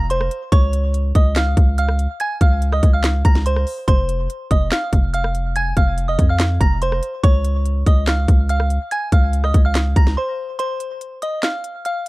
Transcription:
0.00 0.29 F1 loud
0.10 0.50 C5 medium
0.10 0.50 C6 medium
0.10 closed hi-hat medium
0.21 cross-stick medium
0.31 closed hi-hat medium
0.52 1.13 C#2 loud
0.52 1.12 C#5 medium
0.52 1.11 C#6 loud
0.52 kick loud
0.52 closed hi-hat medium
0.73 closed hi-hat medium
0.94 closed hi-hat medium
1.15 1.55 C#2 loud
1.15 1.33 D#5 medium
1.15 1.32 D#6 medium
1.15 kick medium
1.15 closed hi-hat medium
1.36 1.76 F5 medium
1.36 1.76 F6 medium
1.36 snare loud
1.36 clap loud
1.36 closed hi-hat medium
1.57 2.07 C#2 loud
1.57 kick loud
1.57 closed hi-hat medium
1.78 2.18 F5 medium
1.78 2.18 F6 medium
1.78 closed hi-hat medium
1.89 cross-stick medium
1.99 closed hi-hat medium
2.20 2.38 G#5 medium
2.20 2.37 G#6 loud
2.20 closed hi-hat medium
2.41 2.81 C#2 loud
2.41 2.71 F5 medium
2.41 2.71 F6 medium
2.41 kick medium
2.41 closed hi-hat medium
2.62 closed hi-hat medium
2.72 2.90 D#5 medium
2.72 2.90 D#6 medium
2.72 cross-stick medium
2.83 3.23 C#2 loud
2.83 kick medium
2.83 closed hi-hat medium
2.93 3.23 F5 medium
2.93 3.23 F6 medium
3.04 snare loud
3.04 clap medium
3.04 closed hi-hat medium
3.25 3.65 C#2 loud
3.25 3.42 A#5 medium
3.25 3.43 A#6 medium
3.25 kick loud
3.25 closed hi-hat medium
3.35 snare medium
3.46 3.86 C5 medium
3.46 3.85 C6 medium
3.46 closed hi-hat medium
3.56 cross-stick medium
3.67 open hi-hat medium
3.88 4.28 F1 loud
3.88 4.47 C5 medium
3.88 4.47 C6 loud
3.88 kick loud
3.88 closed hi-hat medium
4.09 closed hi-hat medium
4.30 closed hi-hat medium
4.51 4.71 F1 loud
4.51 4.68 D#5 medium
4.51 4.68 D#6 medium
4.51 kick medium
4.51 closed hi-hat medium
4.72 5.12 F5 medium
4.72 5.11 F6 medium
4.72 snare loud
4.72 clap medium
4.72 closed hi-hat medium
4.93 5.73 F1 loud
4.93 kick loud
4.93 closed hi-hat medium
5.14 5.54 F5 medium
5.14 5.53 F6 medium
5.14 closed hi-hat medium
5.24 cross-stick medium
5.35 closed hi-hat medium
5.56 5.73 G#5 medium
5.56 5.73 G#6 loud
5.56 closed hi-hat medium
5.77 6.17 F1 loud
5.77 6.07 F5 medium
5.77 6.06 F6 medium
5.77 kick medium
5.77 closed hi-hat medium
5.98 closed hi-hat medium
6.08 6.26 D#5 medium
6.08 6.25 D#6 medium
6.19 6.59 F2 loud
6.19 kick medium
6.19 closed hi-hat medium
6.29 6.59 F5 medium
6.29 6.59 F6 medium
6.40 snare loud
6.40 clap medium
6.40 closed hi-hat medium
6.60 7.01 F1 loud
6.60 6.78 A#5 medium
6.60 6.78 A#6 medium
6.60 kick loud
6.60 closed hi-hat medium
6.82 7.22 C5 medium
6.82 7.21 C6 medium
6.82 closed hi-hat medium
6.92 cross-stick medium
7.03 closed hi-hat medium
7.23 7.84 C#2 loud
7.23 7.83 C#5 medium
7.23 7.83 C#6 loud
7.23 kick loud
7.23 closed hi-hat medium
7.45 closed hi-hat medium
7.66 closed hi-hat medium
7.86 8.27 C#2 loud
7.86 8.04 D#5 medium
7.86 8.04 D#6 medium
7.86 kick medium
7.86 closed hi-hat medium
8.07 8.47 F5 medium
8.07 8.47 F6 medium
8.07 snare loud
8.07 clap medium
8.07 closed hi-hat medium
8.28 8.79 C#2 loud
8.28 kick loud
8.28 closed hi-hat medium
8.49 8.89 F5 medium
8.49 8.89 F6 medium
8.49 closed hi-hat medium
8.60 cross-stick medium
8.70 closed hi-hat medium
8.91 9.09 G#5 medium
8.91 9.09 G#6 loud
8.91 closed hi-hat medium
9.12 9.53 C#2 loud
9.12 9.42 F5 medium
9.12 9.42 F6 medium
9.12 kick loud
9.12 closed hi-hat medium
9.33 closed hi-hat medium
9.44 9.62 D#5 medium
9.44 9.61 D#6 medium
9.44 cross-stick medium
9.54 9.95 C#2 loud
9.54 kick medium
9.54 closed hi-hat medium
9.65 9.95 F5 medium
9.65 9.94 F6 medium
9.75 snare loud
9.75 clap medium
9.75 closed hi-hat medium
9.96 10.16 C#2 loud
9.96 10.13 A#5 medium
9.96 10.14 A#6 medium
9.96 kick loud
9.96 closed hi-hat medium
10.07 snare medium
10.17 10.57 C5 medium
10.17 10.57 C6 medium
10.59 11.19 C5 medium
10.59 11.18 C6 loud
10.59 closed hi-hat medium
10.80 closed hi-hat medium
11.01 closed hi-hat medium
11.22 11.40 D#5 medium
11.22 11.39 D#6 medium
11.22 closed hi-hat medium
11.43 11.83 F5 medium
11.43 11.83 F6 medium
11.43 snare loud
11.43 clap medium
11.43 closed hi-hat medium
11.64 closed hi-hat medium
11.85 12.09 F5 medium
11.85 12.09 F6 medium
11.85 closed hi-hat medium

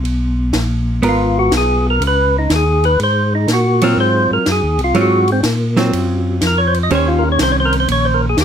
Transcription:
0.04 0.52 B1 medium
0.04 ride medium
0.53 1.01 A#1 medium
0.53 snare medium
0.53 hi-hat pedal medium
0.53 ride medium
1.02 1.50 G#1 medium
1.02 2.40 B3 medium
1.02 2.41 F4 medium
1.02 2.41 A#4 medium
1.02 ride medium
1.09 1.38 F4 medium
1.39 1.53 F#4 medium
1.51 1.99 B1 medium
1.51 snare medium
1.51 hi-hat pedal medium
1.51 ride medium
1.57 1.87 G#4 medium
1.90 2.03 A#4 medium
2.00 2.48 C#2 medium
2.00 ride medium
2.07 2.37 B4 loud
2.38 2.52 D#4 medium
2.50 2.97 D#2 medium
2.50 snare medium
2.50 hi-hat pedal medium
2.50 ride medium
2.56 2.85 G#4 medium
2.84 3.00 B4 medium
2.84 ride soft
2.99 3.47 G#2 medium
2.99 ride medium
3.03 3.34 C5 medium
3.35 3.49 D#4 medium
3.48 3.96 A#2 medium
3.48 snare medium
3.48 hi-hat pedal medium
3.48 ride medium
3.53 3.83 F#4 medium
3.81 4.43 F#3 medium
3.81 4.44 C4 medium
3.81 4.44 F4 medium
3.81 3.98 A#4 medium
3.81 ride medium
3.97 4.28 G#2 medium
3.97 4.31 C5 loud
4.31 4.38 G#2 soft
4.31 4.47 A#4 medium
4.46 4.62 F#2 medium
4.46 snare medium
4.46 hi-hat pedal medium
4.46 ride medium
4.52 4.81 G#4 medium
4.63 4.79 D#2 medium
4.78 4.94 C2 medium
4.78 ride soft
4.84 4.97 F4 medium
4.94 5.42 G#2 medium
4.94 5.25 F#3 medium
4.94 5.25 C4 medium
4.94 5.25 F4 medium
4.94 ride soft
5.01 5.30 F#4 medium
5.28 ride soft
5.32 5.41 C4 medium
5.43 5.91 A#2 medium
5.43 snare medium
5.43 hi-hat pedal medium
5.43 ride medium
5.77 6.39 F#3 medium
5.77 6.39 C4 medium
5.77 6.39 F4 medium
5.77 snare medium
5.77 ride soft
5.93 6.41 F#2 medium
5.93 ride medium
6.41 6.89 F2 medium
6.41 snare medium
6.41 hi-hat pedal medium
6.41 ride medium
6.47 6.61 A#4 medium
6.58 6.74 C#5 loud
6.67 6.79 C5 medium
6.74 ride soft
6.83 6.91 D#5 medium
6.90 7.38 D#2 medium
6.90 8.28 D#3 medium
6.90 8.29 C#4 medium
6.90 8.29 G4 medium
6.90 8.29 C5 medium
6.90 ride medium
6.95 7.09 C#5 medium
7.08 7.24 F4 medium
7.19 7.29 A#4 medium
7.32 7.40 C#5 medium
7.39 7.87 C2 medium
7.39 7.52 C5 medium
7.39 snare medium
7.39 hi-hat pedal medium
7.39 ride medium
7.52 7.57 C#5 loud
7.60 7.75 C5 medium
7.65 7.77 A#4 medium
7.73 ride soft
7.80 7.88 C5 medium
7.88 8.36 A#1 medium
7.88 8.07 C#5 loud
7.88 ride medium
8.05 8.21 C5 medium
8.14 8.26 A#4 medium
8.29 8.37 G#4 medium
8.37 8.45 D#2 medium
8.37 snare medium
8.37 hi-hat pedal medium
8.37 ride medium
8.41 8.45 G4 medium

